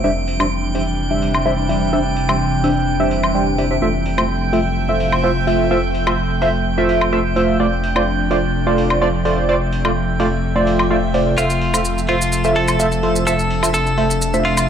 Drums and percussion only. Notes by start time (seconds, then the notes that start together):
0.28 open hi-hat
0.40 high woodblock
0.75 open hi-hat
1.22 open hi-hat
1.34 high woodblock
1.69 open hi-hat
2.17 open hi-hat
2.29 high woodblock
2.64 open hi-hat
3.11 open hi-hat
3.23 high woodblock
3.58 open hi-hat
4.06 open hi-hat
4.18 high woodblock
4.53 open hi-hat
5.00 open hi-hat
5.12 high woodblock
5.47 open hi-hat
5.95 open hi-hat
6.07 high woodblock
6.42 open hi-hat
6.89 open hi-hat
7.01 high woodblock
7.36 open hi-hat
7.84 open hi-hat
7.96 high woodblock
8.31 open hi-hat
8.78 open hi-hat
8.90 high woodblock
9.25 open hi-hat
9.73 open hi-hat
9.85 high woodblock
10.20 open hi-hat
10.67 open hi-hat
10.79 open hi-hat, high woodblock
11.14 open hi-hat
11.38 maracas
11.50 maracas
11.61 open hi-hat
11.74 high woodblock, maracas
11.85 maracas
11.98 maracas
12.09 open hi-hat
12.22 maracas
12.32 maracas
12.44 maracas
12.56 open hi-hat
12.68 high woodblock, maracas
12.80 maracas
12.92 maracas
13.03 open hi-hat
13.16 maracas
13.27 maracas
13.39 maracas
13.50 open hi-hat
13.63 high woodblock, maracas
13.74 maracas
13.87 maracas
13.98 open hi-hat
14.11 maracas
14.22 maracas
14.34 maracas
14.45 open hi-hat
14.57 high woodblock, maracas